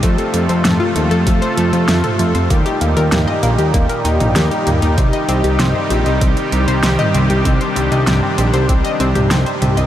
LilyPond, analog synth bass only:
\new Staff \with { instrumentName = "Analog synth bass" } { \clef bass \time 4/4 \key c \dorian \tempo 4 = 97 f,16 r16 f,16 f,16 f,16 r16 ees,16 f,16 f,16 r16 f,16 f,16 f,16 r16 f,16 f,16 | ees,16 r16 ees,16 ees,16 ees,16 r16 bes,,16 ees,16 ees,,16 r16 ees,16 bes,,16 ees,16 r16 ees,16 ees,16 | c,16 r16 c,16 c,16 c,16 r16 bes,,16 c,16 c,16 r16 c,16 c,16 c,16 r16 c,16 c,16 | c,16 r16 c,16 c,16 c,16 r16 bes,,16 c,16 c,16 r16 c,16 c,16 c,16 r16 c,16 c,16 | }